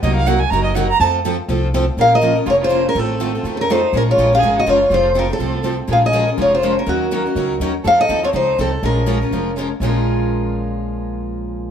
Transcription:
X:1
M:4/4
L:1/16
Q:"Swing" 1/4=245
K:Bbm
V:1 name="Steel-string acoustic guitar"
z16 | z16 | f2 e4 z2 d2 c4 B2 | =A8- A3/2 A/2 B2 c4 |
B2 d4 f4 e2 d4 | c4 B2 =A8 z2 | f2 e4 z2 d2 c4 B2 | G12 z4 |
f2 e4 d2 c4 =A4 | B12 z4 | z16 | z16 |]
V:2 name="Violin"
e2 f2 g2 a2 b2 e2 g2 b2 | =a2 z12 z2 | B2 B4 z2 F2 F4 D2 | C8- C3/2 C/2 D2 E4 |
D2 F4 A4 G2 F4 | F4 F2 C8 z2 | A2 A4 z2 F2 F4 D2 | B,12 z4 |
=A2 A4 F2 E4 C4 | D12 z4 | z16 | z16 |]
V:3 name="Steel-string acoustic guitar"
[C,G,B,EB]2 z2 [C,G,B,EB]2 z2 [C,G,B,EB]2 z2 [C,G,B,EB]2 z2 | [F,CF=A]2 z2 [F,CFA]2 z2 [F,CFA]2 z2 [F,CFA]2 z2 | [F,B,DFB]2 z2 [F,B,DFB]2 [DFB]2 [F,B,DFB]2 z2 [F,B,DFB]2 z2 | [E,=A,CF=A]2 z2 [E,A,CFA]2 [CFA]2 [E,A,CFA]2 z2 [E,A,CFA]2 z2 |
[F,A,DFB]2 z2 [F,A,DFB]2 [DFB]2 [F,A,DFB]2 z2 [F,A,DFB]2 z2 | [F,CF=A]2 z2 [F,CFA]2 [CFA]2 [F,CFA]2 z2 [F,CFA]2 z2 | [F,A,DFB]2 z2 [F,A,DFB]2 [DFB]2 [F,A,DFB]2 z2 [F,A,DFB]2 z2 | [E,G,DEB]2 z2 [E,G,DEB]2 [DEB]2 [E,G,DEB]2 z2 [E,G,DEB]2 z2 |
[F,CE=A]2 z2 [F,CEA]2 [CEA]2 [F,CEA]2 z2 [F,CEA]2 z2 | [F,A,DFB]2 z2 [F,A,DFB]2 [DFB]2 [F,A,DFB]2 z2 [F,A,DFB]2 z2 | [B,,F,A,DFB]16- | [B,,F,A,DFB]16 |]
V:4 name="Steel-string acoustic guitar"
[C,G,B,EB]2 z2 [C,G,B,EB]2 z2 [C,G,B,EB]2 z2 [C,G,B,EB]2 z2 | [F,=A,CF=A]2 z2 [F,A,CFA]2 z2 [F,A,CFA]2 z2 [F,A,CFA]2 z2 | [F,B,DFB]2 z2 [F,B,DFB]2 z2 [F,B,DFB]2 z2 [F,B,DFB]2 z2 | [E,=A,CF=A]2 z2 [E,A,CFA]2 z2 [E,A,CFA]2 z2 [E,A,CFA]2 z2 |
[F,A,DFB]2 z2 [F,A,DFB]2 z2 [F,A,DFB]2 z2 [F,A,DFB]2 z2 | [F,=A,CF=A]2 z2 [F,A,CFA]2 z2 [F,A,CFA]2 z2 [F,A,CFA]2 z2 | [F,A,DFB]2 z2 [F,A,DFB]2 z2 [F,A,DFB]2 z2 [F,A,DFB]2 z2 | [E,G,DEB]2 z2 [E,G,DEB]2 z2 [E,G,DEB]2 z2 [E,G,DEB]2 z2 |
[F,CE=A]2 z2 [F,CEA]2 z2 [F,CEA]2 z2 [F,CEA]2 z2 | [F,A,DFB]2 z2 [F,A,DFB]2 z2 [F,A,DFB]2 z2 [F,A,DFB]2 z2 | [B,,F,A,DFB]16- | [B,,F,A,DFB]16 |]
V:5 name="Upright bass" clef=bass
C,,8 G,,,8 | F,,8 C,,8 | B,,,8 F,,,8 | =A,,,8 F,,8 |
B,,,4 B,,,4 A,,,4 G,,,4 | F,,,8 C,,8 | B,,,8 F,,,8 | E,,8 D,,4 E,,4 |
F,,4 E,,4 D,,4 C,,4 | B,,,8 F,,,8 | B,,,16- | B,,,16 |]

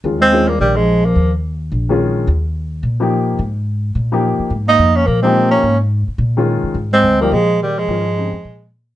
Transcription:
X:1
M:4/4
L:1/8
Q:"Swing" 1/4=214
K:Ebmix
V:1 name="Upright piano"
[E,A,DF] z [E,A,DF] z4 z | z4 z [E,A,DF]3 | z4 z [F,B,EG]3 | z4 z [F,B,EG]3 |
z4 z [F,B,EG]3 | z4 z [E,A,DF]3 | z3 [F,B,EG] z4 | [E,A,DF] z [D,G,CE] z4 z |]
V:2 name="Tenor saxophone"
z C2 B, G, A,2 B,- | B, z6 z | z8 | z8 |
z E2 D B, C2 D- | D z6 z | z C2 B, A,2 G, A,- | A,6 z2 |]
V:3 name="Bass clarinet" clef=bass
z A,2 G, E, F,2 F,- | F, z6 z | z8 | z8 |
z B,2 B, F, A,2 B,- | B, z6 z | z A,2 G, F,2 E, F,- | F,6 z2 |]
V:4 name="Upright bass" clef=bass
E,,4 B,,,4 | E,,4 B,,,4 | E,,4 B,,4 | A,,4 B,,3 z |
A,,2 F,,2 B,,4 | A,,3 z B,,3 z | A,,2 =D,,2 B,,4 | A,,3 F,, B,,4 |]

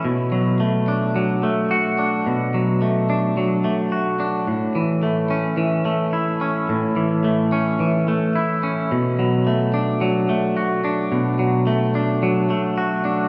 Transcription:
X:1
M:4/4
L:1/8
Q:1/4=108
K:Bdor
V:1 name="Clean electric guitar"
B,, F, A, D F, A, F D | B,, F, A, D F, A, F D | A,, E, A, C E, A, E C | A,, E, A, C E, A, E C |
B,, F, A, D F, A, F D | B,, F, A, D F, A, F D |]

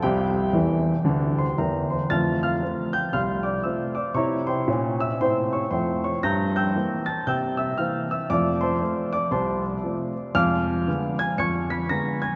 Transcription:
X:1
M:4/4
L:1/8
Q:"Swing" 1/4=116
K:F
V:1 name="Grand piano"
[Gg]4- [Gg] [cc'] [Bgb] [cc'] | [af'a'] [fc'f']2 [gg'] [fc'f'] [dd'] [ee'] [dd'] | [_db_d'] [cgc']2 [ee'] [cgc'] [dd'] [cgc'] [dd'] | [bg'b'] [ge'g']2 [aa'] [ge'g'] [ee'] [ff'] [ee'] |
[dd'] [cac']2 [dd'] [cac'] z3 | [fd'f']3 [_a_a'] [_d'a'_d''] [_c'_c''] [bb'] [aa'] |]
V:2 name="Grand piano" clef=bass
[C,,C,]2 [E,,E,]2 [D,,D,]2 [E,,E,]2 | [F,,A,]2 [F,A,C]2 C,,2 [F,A,C]2 | [C,E]2 [B,,_D]2 [A,,C]2 [F,,A,]2 | G,,2 [E,B,C]2 C,2 [E,B,C]2 |
[F,,A,]2 [F,A,C]2 C,,2 [F,A,C]2 | [F,,_A,]2 [D,A,_C]2 F,,2 [D,A,C]2 |]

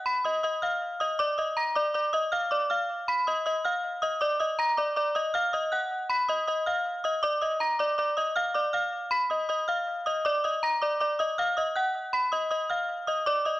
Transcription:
X:1
M:4/4
L:1/8
Q:1/4=159
K:Ebm
V:1 name="Synth bell"
[=b=b'] [^d^d'] [dd'] [ff']2 [dd'] [=d=d'] [^d^d'] | [bb'] [=d=d'] [dd'] [ee'] [ff'] [dd'] [ff']2 | [=b=b'] [ee'] [ee'] [ff']2 [ee'] [=d=d'] [ee'] | [bb'] [=d=d'] [dd'] [ee'] [ff'] [ee'] [gg']2 |
[=b=b'] [^d^d'] [dd'] [ff']2 [dd'] [=d=d'] [^d^d'] | [bb'] [=d=d'] [dd'] [ee'] [ff'] [dd'] [ff']2 | [=b=b'] [ee'] [ee'] [ff']2 [ee'] [=d=d'] [ee'] | [bb'] [=d=d'] [dd'] [ee'] [ff'] [ee'] [gg']2 |
[=b=b'] [^d^d'] [dd'] [ff']2 [dd'] [=d=d'] [^d^d'] |]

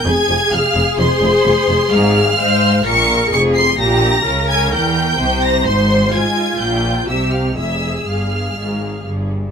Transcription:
X:1
M:4/4
L:1/8
Q:1/4=128
K:Fm
V:1 name="Violin section"
a'2 f'2 c'4 | f'4 d''2 d'' c'' | b'3 a' g'3 b' | c'2 a'2 g'2 =e' f' |
=e'2 f'4 z2 |]
V:2 name="Violin section"
a2 f2 c4 | f4 d'2 d' c' | b3 a g3 b | c2 a2 g2 =e f |
=e2 f4 z2 |]
V:3 name="Viola section"
A8- | A2 c2 B2 A2 | G2 B4 c2- | c2 F4 G2 |
A6- A z |]
V:4 name="Cello section" clef=bass
F,, F,, F,, F,, F,, F,, F,, F,, | A,,2 A,2 B,,2 F,,2 | B,,2 D,2 =E,2 C,2 | A,,2 A,2 B,,2 C,2 |
F,,2 G,,2 A,,2 G,,2 |]
V:5 name="Double bass section" clef=bass
F,,, F,,, F,,, F,,, F,,, F,,, F,,, F,,, | A,,,2 A,,2 B,,,2 F,,,2 | B,,,2 D,,2 =E,,2 C,,2 | A,,,2 A,,2 B,,,2 C,,2 |
F,,,2 G,,,2 A,,,2 G,,,2 |]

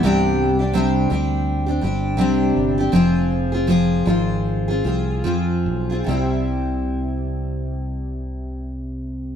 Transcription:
X:1
M:4/4
L:1/16
Q:"Swing 16ths" 1/4=77
K:C
V:1 name="Steel-string acoustic guitar"
[C,G,CDG]3 [CDG] [C,G,CDG]2 [G,CDG]3 [CDG] [G,CDG]2 [C,G,CDG]3 [CDG] | [F,CF_A]3 [CFA] [F,CFA]2 [F,CFA]3 [CFA] [F,CFA]2 [F,CFA]3 [CFA] | [C,G,CEG]16 |]
V:2 name="Fingered electric bass" clef=bass
C,,6 D,,4 G,,,2 C,,2 G,,,2 | F,,,6 _A,,,4 C,,2 F,,2 B,,,2 | C,,16 |]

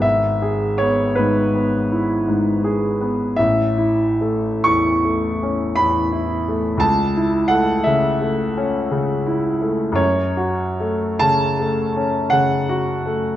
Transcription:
X:1
M:9/8
L:1/8
Q:3/8=55
K:Alyd
V:1 name="Grand piano"
e2 c B4- B z | e3 c'3 b3 | a2 f e4- e z | c3 a3 f3 |]
V:2 name="Grand piano"
G,,, G B, G,, B, E G,, G B, | A,,, E A, E,, A, C E,, E A, | C,, E A, C, A, C C, E A, | F,, F A, C, A, C C, F A, |]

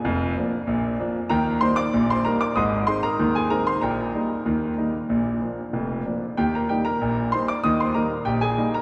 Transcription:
X:1
M:2/4
L:1/16
Q:1/4=95
K:Eb
V:1 name="Grand piano"
[Afa]6 z2 | [Bgb]2 [cc'] [dd']2 [cc'] [Bb] [dd'] | [ec'e']2 [cc'] [Bb]2 [Aa] [Bb] [cc'] | [Bgb]8- |
[Bgb]4 z4 | [Gg] [Bb] [Gg] [Bb]3 [cc'] [dd'] | [ee'] [cc'] [Bb]2 [Gg] [Aa]2 [Bb] |]
V:2 name="Grand piano" clef=bass
[F,,,F,,]2 [F,B,D]2 [B,,,B,,]2 [F,B,D]2 | [E,,E,]2 [G,B,E]2 [B,,,B,,]2 [G,B,E]2 | [A,,,A,,]2 [A,CE]2 [E,,E,]2 [A,CE]2 | [B,,,B,,]2 [G,B,E]2 [E,,E,]2 [G,B,E]2 |
[B,,,B,,]2 [F,B,D]2 [F,,,F,,]2 [F,B,D]2 | [E,,E,]2 [G,B,E]2 [B,,,B,,]2 [G,B,E]2 | [E,,E,]2 [G,B,E]2 [B,,,B,,]2 [G,B,E]2 |]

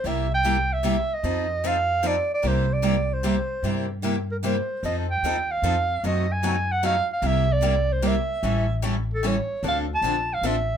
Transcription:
X:1
M:3/4
L:1/8
Q:"Swing" 1/4=150
K:Cmix
V:1 name="Clarinet"
e g2 e2 _e- | _e2 f2 d d | c d2 c3- | c z2 B c2 |
_e g2 f3 | ^d _a2 ^f =f f | e d2 c e2- | e2 z A ^c2 |
f a2 f e2 |]
V:2 name="Steel-string acoustic guitar"
[C,G,B,EG] z [C,G,B,EG] z [C,G,B,EG] z | [F,C_EA] z [F,CEA] z [F,CEA] z | [C,G,B,EG] z [C,G,B,EG] z [C,G,B,EG] z | [C,G,B,EG] z [C,G,B,EG] z [C,G,B,EG] z |
[F,C_EA] z [F,CEA] z [F,CEA] z | [C,^F,A,^D^F] z [C,F,A,DF] z [C,F,A,DF] z | [C,G,B,EG] z [C,G,B,EG] z [C,G,B,EG] z | [E,G,^CEA] z [E,G,CEA] z [E,G,CEA] z |
[D,F,CDA] z [D,F,CDA] z [D,F,CDA] z |]
V:3 name="Steel-string acoustic guitar"
[C,G,B,EG] z [C,G,B,EG] z [C,G,B,EG] z | [F,C_EA] z [F,CEA] z [F,CEA] z | [C,G,B,EG] z [C,G,B,EG] z [C,G,B,EG] z | [C,G,B,EG] z [C,G,B,EG] z [C,G,B,EG] z |
[F,C_EA] z [F,CEA] z [F,CEA] z | [^F,C^DA] z [F,CDA] z [F,CDA] z | [C,G,B,EG] z [C,G,B,EG] z [C,G,B,EG] z | [E,G,^CEA] z [E,G,CEA] z [E,G,CEA] z |
[D,F,CDA] z [D,F,CDA] z [D,F,CDA] z |]
V:4 name="Upright bass" clef=bass
C,,6 | F,,6 | C,,6 | G,,6 |
F,,2 _E,,2 F,,2 | ^F,,6 | C,,6 | A,,,6 |
D,,2 B,,,2 A,,,2 |]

